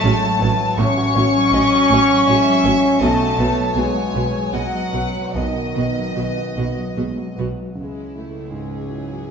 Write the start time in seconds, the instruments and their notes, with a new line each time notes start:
Already playing: grand piano A1 F#3 F#4 C#5, french horn section A3, flute section A5, violin section A5
0.03 double bass section A1, cello section A2, grand piano G#3, viola section C#4 F#4, violin section C#5
0.25 grand piano F#3
0.40 double bass section A1, cello section A2, viola section C#4 F#4, violin section B4, grand piano C#5
0.60 grand piano F#3
0.76 double bass section A1, grand piano A1, cello section A2, french horn section C#4, viola section C#4 F#4, violin section C#5 C#6, flute section C#6
0.97 grand piano F#4
1.15 double bass section A1, cello section A2, viola section C#4 F#4, grand piano C#5
1.35 grand piano F#3
1.52 double bass section A1, cello section A2, viola section C#4 F#4, grand piano C#5, violin section D#5
1.74 grand piano F#4
1.89 double bass section A1, cello section A2, viola section C#4 F#4, violin section C#5
1.94 grand piano C#5
2.12 grand piano F#3
2.27 double bass section A1, cello section A2, grand piano G#3, viola section C#4 F#4, violin section E5
2.49 grand piano F#3
2.64 double bass section A1, cello section A2, viola section C#4 F#4, grand piano C#5
2.84 grand piano F#3
3.00 double bass section B1, grand piano B1, cello section B2, french horn section A3, viola section B3 F#4, violin section D#5 A5, flute section A5
3.23 grand piano F#4
3.37 double bass section B1, cello section B2, viola section B3 F#4, grand piano B4, violin section C#5
3.58 grand piano F#3
3.75 double bass section B1, cello section B2, french horn section G#3, viola section B3 F#4, grand piano B4, violin section G#5, flute section G#5
3.97 grand piano F#4
4.14 double bass section B1, cello section B2, viola section B3 F#4, grand piano B4
4.35 grand piano F#3
4.53 double bass section B1, cello section B2, french horn section F#3, grand piano G#3, viola section B3 F#4, violin section D#5 F#5, flute section F#5
4.75 grand piano F#3
4.93 double bass section B1, cello section B2, viola section B3 F#4, violin section B4, grand piano B4
5.17 grand piano F#3
5.34 double bass section B1, grand piano B1, cello section B2, french horn section D#3, viola section B3 F#4, violin section D#5, flute section D#5
5.56 grand piano F#4
5.76 double bass section B1, cello section B2, viola section B3 F#4, grand piano B4
5.98 grand piano F#3
6.16 double bass section B1, cello section B2, viola section B3 F#4, grand piano B4
6.37 grand piano F#4
6.57 double bass section B1, cello section B2, viola section B3 F#4, grand piano B4
6.77 grand piano F#3
6.96 double bass section B1, cello section B2, grand piano G#3, viola section B3 F#4
7.17 grand piano F#3
7.36 double bass section B1, cello section B2, viola section B3 F#4, grand piano B4
7.56 grand piano F#3
7.75 grand piano C#2, viola section G#3, violin section E4 C#5
7.79 cello section C#2
8.15 viola section A3, grand piano E4
8.51 grand piano G#2, viola section G#3, violin section G#4
8.89 viola section F#3, grand piano E4